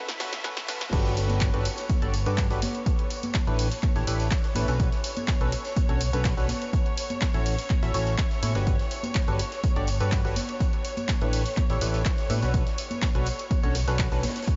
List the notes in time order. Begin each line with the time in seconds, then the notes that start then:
Already playing: E5, riser
0.09 snare, closed hi-hat
0.20 C#4 F#4 A4 B4, snare, open hi-hat
0.33 snare, closed hi-hat
0.44 C#4 F#4 A4 B4, kick, snare, closed hi-hat
0.57 snare, closed hi-hat
0.68 C#4 F#4 A4 B4, snare, open hi-hat
0.81 snare, closed hi-hat
0.93 G1 D4 F#4 G4 A4 B4 C#5, kick, closed hi-hat, crash, tambourine
1.05 snare, closed hi-hat
1.17 closed hi-hat, open hi-hat, tambourine
1.29 closed hi-hat, tambourine, high conga
1.41 kick, snare, clap, closed hi-hat, tambourine
1.54 G1 D4 F#4 G4 A4 B4, closed hi-hat
1.65 closed hi-hat, open hi-hat, tambourine
1.77 snare, closed hi-hat, tambourine
1.89 kick, closed hi-hat, tambourine, high conga
2.02 G1 D4 F#4 G4 A4 D5, closed hi-hat
2.14 closed hi-hat, open hi-hat, tambourine
2.26 G2 D4 F#4 G4 A4 B4, closed hi-hat, tambourine
2.37 kick, snare, clap, closed hi-hat, tambourine
2.50 G1 D4 F#4 G4 A4 B4, snare, closed hi-hat
2.62 snare, closed hi-hat, open hi-hat, tambourine, high conga
2.75 closed hi-hat, tambourine
2.86 kick, closed hi-hat, tambourine
2.99 closed hi-hat
3.10 closed hi-hat, open hi-hat, tambourine
3.23 closed hi-hat, tambourine, high conga
3.34 kick, snare, clap, closed hi-hat
3.47 A1 D4 E4 G4 A4 B4, closed hi-hat
3.59 open hi-hat, tambourine
3.71 open hi-hat, tambourine
3.83 kick, clap, closed hi-hat, tambourine, high conga
3.96 A1 D4 E4 G4 A4 C#5, snare, closed hi-hat
4.07 A1 D4 E4 G4 A4 B4, closed hi-hat, open hi-hat, tambourine
4.19 snare, closed hi-hat, tambourine
4.31 kick, snare, clap, closed hi-hat, tambourine
4.43 snare, closed hi-hat
4.55 A1 D4 E4 G4 A4 B4, closed hi-hat, open hi-hat, tambourine, high conga
4.68 B1 C#4 D4 F#4 A4 B4, snare, closed hi-hat, tambourine
4.80 kick, closed hi-hat, tambourine
4.92 snare, closed hi-hat
5.04 closed hi-hat, open hi-hat, tambourine
5.17 closed hi-hat, tambourine, high conga
5.28 kick, snare, clap, closed hi-hat
5.41 B1 C#4 D4 F#4 A4 B4, closed hi-hat
5.52 closed hi-hat, open hi-hat, tambourine
5.64 snare, closed hi-hat, tambourine
5.76 kick, closed hi-hat, tambourine, high conga
5.89 B1 C#4 D4 F#4 A4 C#5, closed hi-hat
6.00 closed hi-hat, open hi-hat, tambourine
6.13 B1 C#4 D4 F#4 A4 B4, closed hi-hat, tambourine
6.25 kick, snare, clap, closed hi-hat, tambourine
6.37 B1 C#4 D4 F#4 A4 B4, snare, closed hi-hat
6.48 snare, closed hi-hat, open hi-hat, tambourine, high conga
6.62 closed hi-hat, tambourine
6.73 kick, closed hi-hat, tambourine
6.86 closed hi-hat
6.97 closed hi-hat, open hi-hat, tambourine
7.10 closed hi-hat, tambourine, high conga
7.21 kick, snare, clap, closed hi-hat, tambourine
7.34 A1 C#4 E4 F#4 A4 C#5, closed hi-hat
7.46 open hi-hat, tambourine
7.58 open hi-hat, tambourine
7.70 kick, clap, closed hi-hat, tambourine, high conga
7.83 A1 C#4 E4 F#4 A4 E5, snare, closed hi-hat
7.94 A1 C#4 E4 F#4 A4 C#5, closed hi-hat, open hi-hat, tambourine
8.07 snare, closed hi-hat, tambourine
8.18 kick, snare, clap, closed hi-hat
8.31 snare, closed hi-hat
8.43 A2 C#4 E4 F#4 A4 C#5, closed hi-hat, open hi-hat, tambourine, high conga
8.55 G1 D4 F#4 G4 A4 B4, snare, closed hi-hat, tambourine
8.67 kick, closed hi-hat, tambourine
8.79 snare, closed hi-hat
8.91 closed hi-hat, open hi-hat, tambourine
9.03 closed hi-hat, tambourine, high conga
9.15 kick, snare, clap, closed hi-hat
9.28 G1 D4 F#4 G4 A4 B4, closed hi-hat
9.39 closed hi-hat, open hi-hat, tambourine
9.52 snare, closed hi-hat, tambourine
9.63 kick, closed hi-hat, tambourine, high conga
9.76 G1 D4 F#4 G4 A4 D5, closed hi-hat
9.87 closed hi-hat, open hi-hat, tambourine
10.00 G2 D4 F#4 G4 A4 B4, closed hi-hat, tambourine
10.12 kick, snare, clap, closed hi-hat, tambourine
10.25 G1 D4 F#4 G4 A4 B4, snare, closed hi-hat
10.36 snare, closed hi-hat, open hi-hat, tambourine, high conga
10.49 closed hi-hat, tambourine
10.60 kick, closed hi-hat, tambourine
10.73 closed hi-hat
10.84 closed hi-hat, open hi-hat, tambourine
10.97 closed hi-hat, tambourine, high conga
11.08 kick, snare, clap, closed hi-hat, tambourine
11.21 A1 D4 E4 G4 A4 B4, closed hi-hat
11.33 open hi-hat, tambourine
11.46 open hi-hat, tambourine
11.56 kick, clap, closed hi-hat, tambourine, high conga
11.70 A1 D4 E4 G4 A4 C#5, snare, closed hi-hat
11.81 A1 D4 E4 G4 A4 B4, closed hi-hat, open hi-hat, tambourine
11.93 snare, closed hi-hat, tambourine
12.05 kick, snare, clap, closed hi-hat, tambourine
12.18 snare, closed hi-hat
12.30 A2 D4 E4 G4 A4 B4, closed hi-hat, open hi-hat, tambourine, high conga
12.42 B1 C#4 D4 F#4 A4 B4, snare, closed hi-hat, tambourine
12.54 kick, closed hi-hat, tambourine
12.67 snare, closed hi-hat
12.78 closed hi-hat, open hi-hat, tambourine
12.91 closed hi-hat, tambourine, high conga
13.02 kick, snare, clap, closed hi-hat, tambourine
13.15 B1 C#4 D4 F#4 A4 B4, closed hi-hat
13.26 closed hi-hat, open hi-hat, tambourine
13.39 closed hi-hat, tambourine
13.51 kick, closed hi-hat, tambourine, high conga
13.63 B1 C#4 D4 F#4 A4 C#5, closed hi-hat
13.75 snare, closed hi-hat, open hi-hat, tambourine
13.88 B1 C#4 D4 F#4 A4 B4, snare, closed hi-hat, tambourine
13.99 kick, snare, clap, closed hi-hat, tambourine
14.12 B1 C#4 D4 F#4 A4 B4, snare, closed hi-hat
14.23 snare, closed hi-hat, open hi-hat, tambourine, high conga
14.29 snare, closed hi-hat
14.36 snare, closed hi-hat, tambourine
14.42 snare, closed hi-hat
14.47 kick, closed hi-hat, tambourine